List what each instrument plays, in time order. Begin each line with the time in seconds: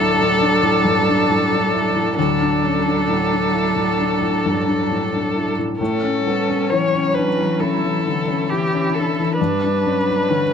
Already playing: felt piano D2 A2 C#4 D4 E4, cello F#3, viola D4, violin A4
0.19 felt piano A2
0.41 felt piano D4
0.63 felt piano A2
0.85 felt piano G2
1.09 felt piano D4
1.30 felt piano A2
1.53 felt piano D4
1.73 felt piano E4
1.96 felt piano A2
2.18 felt piano D2, cello F#3, viola D4, violin A4
2.41 felt piano D4
2.63 felt piano C#4
2.86 felt piano D4
3.08 felt piano A2
3.31 felt piano D4
3.53 felt piano E4
3.76 felt piano A2
4.00 felt piano D4
4.22 felt piano A2
4.46 felt piano G2
4.67 felt piano D4
4.91 felt piano A2
5.14 felt piano D4
5.35 felt piano E4
5.58 felt piano A2
5.80 felt piano A2, cello A3, viola C#4, violin A4
6.03 felt piano C#4
6.24 cello G3, felt piano B3
6.49 felt piano C#4
6.70 felt piano E3, cello F#3, violin C#5
6.93 felt piano C#4
7.14 felt piano D4, violin B4
7.38 felt piano E3
7.60 felt piano C#4, viola E4, violin A4
7.84 felt piano E3
8.05 felt piano D3, viola E4
8.28 felt piano C#4
8.49 cello E3, felt piano E3, violin G4
8.74 felt piano C#4
8.94 felt piano D4, violin A4
9.19 felt piano E3
9.38 felt piano G2, cello G3, viola D4, violin B4
9.63 felt piano D4
9.82 cello F#3, felt piano C#4
10.08 felt piano D4
10.28 felt piano D3, cello E3, viola C#4